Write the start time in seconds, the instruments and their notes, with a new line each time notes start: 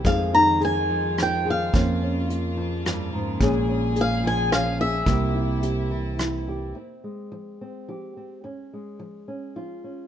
0.04 nylon-string guitar F2 G#3 D#4 G#4, fretless electric bass F2, string section D#3 G#3 F4, steel-string acoustic guitar F5, kick, closed hi-hat
0.33 nylon-string guitar D#4, steel-string acoustic guitar A#5
0.61 nylon-string guitar G#4, closed hi-hat
0.65 steel-string acoustic guitar G#5
0.89 nylon-string guitar F3
1.17 nylon-string guitar D#4, cross-stick, closed hi-hat
1.23 steel-string acoustic guitar G5
1.46 nylon-string guitar G#4
1.50 steel-string acoustic guitar F5
1.73 nylon-string guitar F2 A#3 C#4 F4, fretless electric bass F2, string section A#3, kick, closed hi-hat
1.77 string section C#3
2.02 nylon-string guitar C#4
2.29 nylon-string guitar F4, closed hi-hat
2.57 nylon-string guitar F3
2.85 nylon-string guitar G2, cross-stick, closed hi-hat
3.13 nylon-string guitar G#2
3.41 fretless electric bass A#1, nylon-string guitar A#2 G#3 C#4 G#4, string section G#4, kick, closed hi-hat
3.69 nylon-string guitar C#4
3.96 nylon-string guitar G#4, closed hi-hat
4.01 steel-string acoustic guitar F5
4.24 nylon-string guitar F3, steel-string acoustic guitar G#5
4.52 nylon-string guitar C#4, steel-string acoustic guitar F5, cross-stick, closed hi-hat
4.80 nylon-string guitar G#4, steel-string acoustic guitar E5
5.06 fretless electric bass C2, nylon-string guitar C3 A#3 E4 G4, string section C3 E4, kick, closed hi-hat
5.34 nylon-string guitar E4
5.63 nylon-string guitar G4, closed hi-hat
5.91 nylon-string guitar E3
6.19 nylon-string guitar E4, cross-stick, closed hi-hat
6.48 nylon-string guitar G4
6.75 nylon-string guitar F2 C4
7.04 nylon-string guitar G#3
7.32 nylon-string guitar F3
7.61 nylon-string guitar C4
7.89 nylon-string guitar F3 G4
8.17 nylon-string guitar C4
8.44 nylon-string guitar F2 C#4
8.73 nylon-string guitar G#3
8.99 nylon-string guitar F3
9.28 nylon-string guitar C#4
9.56 nylon-string guitar F3 F4
9.84 nylon-string guitar C#4